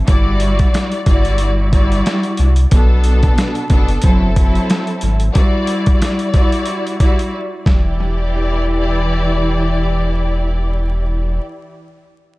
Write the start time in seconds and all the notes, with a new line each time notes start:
0.06 G1 G3 E4 F#4 D5, kick, closed hi-hat
0.40 closed hi-hat
0.59 kick, closed hi-hat
0.74 snare, closed hi-hat
0.92 closed hi-hat
1.06 G1 G3 E4 F#4 D5, kick, closed hi-hat
1.25 closed hi-hat
1.38 closed hi-hat
1.72 G3 E4 F#4 D5, kick, closed hi-hat
1.92 closed hi-hat
2.06 snare, closed hi-hat
2.23 closed hi-hat
2.37 C2, closed hi-hat
2.56 closed hi-hat
2.71 B1 B2 B3 D4 A4, kick, closed hi-hat
3.04 closed hi-hat
3.23 kick, closed hi-hat
3.38 snare, closed hi-hat
3.55 closed hi-hat
3.69 F#1 B2 B3 D4 A4, kick, closed hi-hat
3.89 closed hi-hat
4.02 F#1 F#3 C4 E4 A4, kick, closed hi-hat
4.35 F#3 C4 E4 A4, kick, closed hi-hat
4.55 closed hi-hat
4.70 snare, closed hi-hat
4.87 closed hi-hat
5.01 G#1, closed hi-hat
5.20 closed hi-hat
5.33 G3 E4 F#4 D5, kick, closed hi-hat
5.67 closed hi-hat
5.86 kick, closed hi-hat
6.02 snare, closed hi-hat
6.19 closed hi-hat
6.33 G3 E4 F#4 D5, kick, closed hi-hat
6.52 closed hi-hat
6.65 closed hi-hat
6.87 closed hi-hat
6.99 G3 E4 F#4 D5, kick, closed hi-hat
7.19 closed hi-hat
7.66 E1 E3 E4 G4 D5, kick, snare